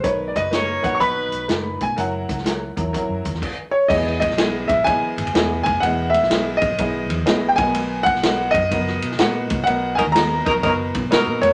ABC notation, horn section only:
X:1
M:4/4
L:1/16
Q:"Swing" 1/4=125
K:B
V:1 name="Horn section"
z2 [F,DB]2 [A,Fc]4 [F,DB]4 z4 | z16 | z16 | z16 |
z16 | z2 [F,DA] z3 [F,DA] z [F,DA] z3 [F,DA]4 |]